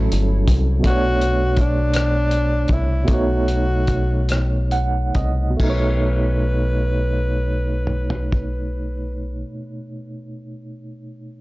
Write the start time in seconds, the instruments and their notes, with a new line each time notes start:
Already playing: analog synth pad B2 F#3 A3 E4, tine electric piano F#3 C#4 E4 A4
0.12 fingered electric bass G1, closed hi-hat
0.48 fingered electric bass C2, kick, closed hi-hat
0.80 tine electric piano B2 A3
0.84 fingered electric bass B1, tine electric piano D4, tenor saxophone F#4, kick, closed hi-hat
0.90 tine electric piano C#5
1.21 closed hi-hat
1.57 kick, closed hi-hat
1.61 tenor saxophone D4
1.94 cross-stick, closed hi-hat
2.31 closed hi-hat
2.68 fingered electric bass C2, kick, closed hi-hat
2.73 tenor saxophone E4
3.04 tine electric piano B2 A3, closed hi-hat
3.08 fingered electric bass B1, tine electric piano D#4, kick
3.13 tenor saxophone F#4, tine electric piano C#5
3.48 closed hi-hat
3.87 kick, closed hi-hat
4.29 cross-stick, closed hi-hat
4.71 tine electric piano F#5, closed hi-hat
5.15 fingered electric bass C2, tine electric piano D#5, kick, closed hi-hat
5.50 tine electric piano B2
5.57 fingered electric bass B1, tine electric piano A3, kick, crash
5.63 tine electric piano D#4, tenor saxophone B4
5.70 tine electric piano C#5
7.87 mid tom
8.10 floor tom
8.32 kick